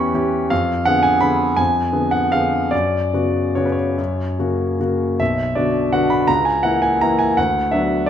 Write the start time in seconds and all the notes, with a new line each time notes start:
Already playing: E2 E3 C#4 G4 B5 C#6
0.14 E3 C#4 G4
0.50 F2 F5
0.85 D3 B3 G#4 F#5
1.03 G#5
1.21 D3 B3 G#4 B5
1.56 F2 G#5
1.92 D3 B3 G#4
2.11 F#5
2.32 D3 B3 G#4 F5
2.71 F#2 D5
3.13 C#3 B3 F#4
3.55 C#3 B3 F#4 C#5
3.66 B4
3.72 C#5
3.98 F#2
4.39 C#3 A#3 F#4
4.80 C#3 A#3 F#4
5.20 B1 E5
5.55 D3 B3 F#4 D5
5.93 D3 B3 F#4 F#5
6.10 B5
6.27 C#2 A#5
6.45 G#5
6.63 E3 A#3 E4 F#5
6.82 G#5
7.01 E3 A#3 E4 A#5
7.19 G#5
7.37 D2 F#5
7.71 F#3 B3 D4 E5
8.06 D5